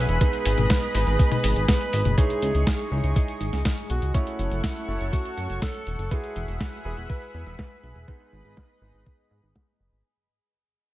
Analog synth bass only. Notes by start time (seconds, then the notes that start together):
0.09 E1
0.46 G#1
0.58 G#1
0.95 G#1
1.07 G#1
1.44 G#1
1.56 G#1
1.93 G#1
2.05 F#1
2.42 C#2
2.55 C#2
2.91 C#2
3.04 C#2
3.41 G#1
3.53 C#2
3.90 B1
4.02 C#2
4.39 F#1
4.51 F#1
4.88 F#1
5.01 F#1
5.37 F#2
5.50 F#1
5.87 E1
5.99 F#1
6.36 E1
6.48 E1
6.85 E1
6.97 E1
7.34 E2
7.46 E1
7.83 B1
7.96 E1
8.33 G#1
8.45 G#1
8.82 G#1
8.94 G#1
9.31 G#2
9.43 G#1
9.80 F#1
9.92 G#1